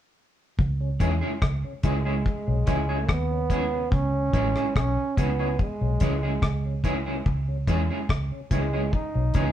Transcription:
0.59 C#2, kick
0.80 C#3
1.00 E2 E3 G#3 C#4 E4 G#4, kick, closed hi-hat
1.21 C#3 G#3 C#4 E4 G#4
1.42 C#2, kick, cross-stick
1.64 C#3
1.83 C#2 E3 G#3 C#4 E4 G#4, kick, closed hi-hat
2.05 G#3 C#4 E4 G#4
2.26 kick
2.47 B1 C#3
2.67 C#2 E3 G#3 C#4 E4 G#4, kick, closed hi-hat
2.89 G#3 C#4 E4 G#4
3.09 D#2 B3, kick, cross-stick
3.31 C#3
3.50 E3 G#3 C#4 E4 G#4, kick, closed hi-hat
3.74 C#3
3.92 C#2 C#4, kick
4.14 C#3
4.33 A1 E3 G#3 C#4 E4 G#4, kick, closed hi-hat
4.55 C#3 G#3 C#4 E4 G#4, cross-stick
4.76 B1 C#4, kick, cross-stick
4.97 C#3
5.17 C#2 E3 G#3 B3 C#4 E4 G#4, kick, closed hi-hat
5.39 G#3 C#4 E4 G#4
5.59 G#3, kick
5.81 B1 C#3
6.00 C#2 E3 G#3 C#4 E4 G#4, kick, closed hi-hat
6.23 C#3 G#3 C#4 E4 G#4
6.42 C#2, kick, cross-stick
6.65 C#3
6.84 E3 G#3 C#4 E4 G#4, kick, closed hi-hat
7.06 C#3 G#3 C#4 E4 G#4
7.26 C#2, kick
7.48 C#3
7.67 E2 E3 G#3 C#4 E4 G#4, kick, closed hi-hat
7.90 C#3 G#3 C#4 E4 G#4
8.09 C#2, kick, cross-stick
8.32 C#3
8.51 C#2 E3 G#3 C#4 E4 G#4, kick, closed hi-hat
8.73 G#3 C#4 E4 G#4
8.93 D#4, kick
9.14 B1 C#3
9.34 C#2 E3 G#3 C#4 E4 G#4, kick, closed hi-hat

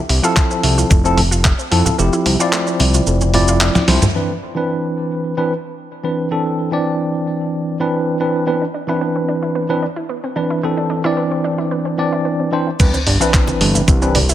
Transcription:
0.09 C2 E4, open hi-hat
0.23 F3 C4 E4 F4 A4, shaker
0.36 A3, kick, clap, muted conga, shaker
0.51 C4, shaker
0.63 C2 E4, open hi-hat
0.78 F4, high conga, shaker
0.90 F1 A3, kick, muted conga, shaker
1.04 F3 C4 E4 A4, shaker
1.17 E4, open hi-hat, high conga, low conga
1.31 F4, muted conga, shaker
1.44 A3, kick, clap, shaker
1.59 C4, shaker
1.71 F2 F3 C4 E4 A4, open hi-hat
1.86 F4, muted conga, low conga, shaker
1.98 F1 F3 A3 C4 E4 G4, shaker
2.13 E4, shaker
2.26 C2 E4, open hi-hat, muted conga
2.39 F3 C4 E4 F4 D5, shaker
2.53 A3, clap, shaker
2.67 C4, shaker
2.80 C2 E4, open hi-hat, muted conga
2.94 F4, high conga, shaker
3.07 F1 A3, shaker
3.21 C4, muted conga, high conga, shaker
3.34 F3 C4 E4 F4 D5, open hi-hat, high conga, low conga
3.48 F4, shaker
3.61 A3, clap, shaker
3.75 E4, snare, muted conga, low conga, shaker
3.88 C2 F3 A3 C4 E4 C5, snare, open hi-hat
4.02 A3, mid tom, low conga, shaker
4.15 E3 C4 D4 B4
4.55 E3 C4 D4 B4
5.37 E3 C4 D4 B4
6.04 E3 C4 D4 B4
6.31 E3 C4 D4 A4
6.71 E3 C4 D4 D5
7.80 E3 C4 D4 B4
8.20 E3 C4 D4 B4
8.47 E3 B3 C4 D4 B4
8.62 D4
8.74 D4
8.87 E3 C4 D4 E4 B4
9.01 B3
9.16 C4
9.28 D4
9.43 E4
9.55 B3
9.69 E3 C4 D4 B4
9.82 D4
9.96 E4
10.09 B3
10.24 C4
10.36 E3 C4 D4 B4
10.50 E4
10.63 E3 B3 C4 D4 A4
10.77 D4
10.90 D4
11.04 E3 C4 D4 E4 D5
11.17 B3
11.31 C4
11.44 D4
11.58 E4
11.71 B3
11.85 C4
11.98 E3 C4 D4 D5
12.12 E4
12.25 B3
12.40 C4
12.52 E3 C4 D4 C5
12.67 E4
12.79 C2 E3 B3 C4 D4 B4, kick, crash, sub drop, shaker
12.94 C4, muted conga, shaker
13.07 G1 D4, open hi-hat
13.20 E3 C4 D4 E4 B4, shaker
13.34 B3, kick, clap, shaker
13.47 C4, muted conga, shaker
13.61 G1 D4, open hi-hat
13.74 E4, high conga, shaker
13.88 C2 B3, kick, muted conga, shaker
14.01 E3 C4 D4 B4, shaker
14.15 D4, open hi-hat, high conga, low conga
14.29 E4, shaker

